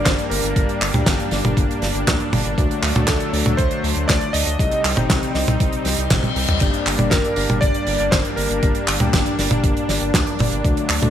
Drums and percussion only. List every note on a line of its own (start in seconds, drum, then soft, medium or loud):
0.06 kick loud
0.06 snare loud
0.06 clap medium
0.06 closed hi-hat medium
0.19 closed hi-hat medium
0.31 open hi-hat loud
0.45 closed hi-hat medium
0.56 kick loud
0.56 closed hi-hat medium
0.69 closed hi-hat medium
0.82 clap medium
0.82 open hi-hat loud
0.94 closed hi-hat medium
0.94 high tom medium
1.06 kick loud
1.06 snare loud
1.06 clap medium
1.06 closed hi-hat loud
1.20 closed hi-hat medium
1.31 snare soft
1.31 open hi-hat loud
1.45 closed hi-hat medium
1.45 high tom medium
1.57 kick loud
1.57 closed hi-hat medium
1.71 closed hi-hat medium
1.82 snare soft
1.82 open hi-hat loud
1.95 closed hi-hat medium
2.07 kick loud
2.07 snare loud
2.07 clap medium
2.07 closed hi-hat loud
2.20 closed hi-hat medium
2.33 open hi-hat loud
2.33 high tom medium
2.45 closed hi-hat medium
2.58 kick loud
2.58 closed hi-hat medium
2.71 closed hi-hat medium
2.83 clap medium
2.83 open hi-hat loud
2.95 closed hi-hat medium
2.95 high tom medium
3.07 kick loud
3.07 snare loud
3.07 clap medium
3.07 closed hi-hat loud
3.20 closed hi-hat medium
3.34 open hi-hat loud
3.46 closed hi-hat medium
3.46 high tom medium
3.59 kick loud
3.59 closed hi-hat loud
3.71 closed hi-hat medium
3.84 open hi-hat loud
3.96 closed hi-hat medium
4.09 kick loud
4.09 snare loud
4.09 clap medium
4.09 closed hi-hat loud
4.21 closed hi-hat medium
4.34 open hi-hat loud
4.47 closed hi-hat medium
4.59 kick loud
4.59 closed hi-hat loud
4.72 closed hi-hat medium
4.84 clap medium
4.84 open hi-hat loud
4.97 closed hi-hat medium
4.97 high tom medium
5.10 kick loud
5.10 snare loud
5.10 clap medium
5.10 closed hi-hat loud
5.23 closed hi-hat medium
5.35 snare soft
5.35 open hi-hat loud
5.48 closed hi-hat medium
5.48 high tom medium
5.60 kick loud
5.60 closed hi-hat loud
5.72 closed hi-hat medium
5.85 snare soft
5.85 open hi-hat loud
5.98 closed hi-hat medium
6.10 kick loud
6.10 snare loud
6.10 clap loud
6.10 closed hi-hat loud
6.10 high tom medium
6.23 closed hi-hat medium
6.23 high tom medium
6.36 open hi-hat loud
6.48 closed hi-hat medium
6.48 mid tom medium
6.60 kick loud
6.60 closed hi-hat medium
6.60 crash medium
6.74 closed hi-hat medium
6.86 clap medium
6.86 open hi-hat loud
6.99 closed hi-hat medium
6.99 high tom medium
7.11 kick loud
7.11 snare loud
7.11 clap medium
7.11 closed hi-hat loud
7.25 closed hi-hat medium
7.36 open hi-hat loud
7.50 closed hi-hat medium
7.50 high tom medium
7.62 kick loud
7.62 closed hi-hat loud
7.74 closed hi-hat medium
7.87 open hi-hat loud
8.00 closed hi-hat medium
8.12 kick loud
8.12 snare loud
8.12 clap medium
8.12 closed hi-hat loud
8.25 closed hi-hat medium
8.37 open hi-hat loud
8.51 closed hi-hat medium
8.63 kick loud
8.63 closed hi-hat medium
8.75 closed hi-hat medium
8.88 clap medium
8.88 open hi-hat loud
9.00 closed hi-hat medium
9.00 high tom medium
9.13 kick loud
9.13 snare loud
9.13 clap medium
9.13 closed hi-hat loud
9.26 closed hi-hat medium
9.39 snare soft
9.39 open hi-hat loud
9.51 closed hi-hat medium
9.51 high tom medium
9.64 kick loud
9.64 closed hi-hat loud
9.77 closed hi-hat medium
9.89 snare soft
9.89 open hi-hat loud
10.01 closed hi-hat medium
10.14 kick loud
10.14 snare loud
10.14 clap medium
10.14 closed hi-hat loud
10.27 closed hi-hat medium
10.39 open hi-hat loud
10.39 high tom medium
10.52 closed hi-hat medium
10.65 kick loud
10.65 closed hi-hat medium
10.77 closed hi-hat medium
10.89 clap medium
10.89 open hi-hat loud
11.02 closed hi-hat medium
11.02 high tom medium